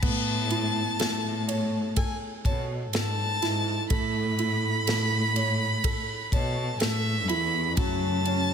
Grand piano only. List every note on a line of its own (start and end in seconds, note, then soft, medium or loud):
0.03 3.86 B3 medium
0.51 2.41 E4 medium
1.00 1.95 A4 medium
1.48 2.44 C#5 medium
1.97 2.93 A4 medium
2.46 4.35 C#5 medium
2.94 4.83 A4 medium
3.42 4.38 E4 medium
3.90 7.73 A3 medium
4.39 6.28 E4 medium
4.88 5.83 A4 medium
5.36 6.32 C#5 medium
5.85 6.79 A4 medium
6.33 7.74 C#5 medium
6.81 7.74 A4 medium
7.30 7.76 E4 medium
7.78 8.54 F#3 medium
8.26 8.54 C#4 medium